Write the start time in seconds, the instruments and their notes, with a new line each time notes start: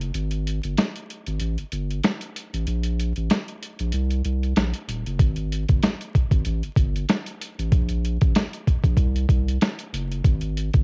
Already playing: sub bass F#1
0.01 closed hi-hat
0.14 sub bass G#1, closed hi-hat
0.31 closed hi-hat
0.47 closed hi-hat
0.63 sub bass G1, closed hi-hat
0.77 snare, closed hi-hat
0.96 closed hi-hat
1.10 closed hi-hat
1.26 sub bass G#1, closed hi-hat
1.40 sub bass A1, closed hi-hat
1.58 sub bass G1, closed hi-hat
1.72 sub bass G1, closed hi-hat
1.91 closed hi-hat
2.04 snare, closed hi-hat
2.21 closed hi-hat
2.36 closed hi-hat
2.54 sub bass A1, closed hi-hat
2.67 sub bass A#1, closed hi-hat
2.83 closed hi-hat
3.00 closed hi-hat
3.16 sub bass A1, closed hi-hat
3.30 snare, closed hi-hat
3.48 closed hi-hat
3.63 closed hi-hat
3.79 sub bass A#1, closed hi-hat
3.92 sub bass C2, closed hi-hat
4.10 closed hi-hat
4.25 sub bass C2, closed hi-hat
4.43 closed hi-hat
4.56 sub bass A#1, snare, closed hi-hat
4.74 closed hi-hat
4.88 sub bass D#1, closed hi-hat
5.06 sub bass F#1, closed hi-hat
5.19 sub bass G#1, kick, closed hi-hat
5.36 closed hi-hat
5.52 closed hi-hat
5.68 sub bass G1, kick, closed hi-hat
5.82 snare, closed hi-hat
6.01 closed hi-hat
6.15 kick, closed hi-hat
6.31 sub bass G#1, kick, closed hi-hat
6.45 sub bass A1, closed hi-hat
6.63 sub bass G1, closed hi-hat
6.76 sub bass G1, kick, closed hi-hat
6.96 closed hi-hat
7.09 snare, closed hi-hat
7.26 closed hi-hat
7.41 closed hi-hat
7.59 sub bass A1, closed hi-hat
7.72 sub bass A#1, kick, closed hi-hat
7.89 closed hi-hat
8.05 closed hi-hat
8.21 sub bass A1, kick, closed hi-hat
8.35 snare, closed hi-hat
8.53 closed hi-hat
8.67 kick, closed hi-hat
8.84 sub bass A#1, kick, closed hi-hat
8.97 sub bass C2, kick, closed hi-hat
9.16 closed hi-hat
9.29 sub bass C2, kick, closed hi-hat
9.48 closed hi-hat
9.61 snare, closed hi-hat
9.79 closed hi-hat
9.93 sub bass F#1, closed hi-hat
10.12 closed hi-hat
10.24 sub bass G#1, kick, closed hi-hat
10.41 closed hi-hat
10.57 closed hi-hat
10.74 sub bass G1, kick, closed hi-hat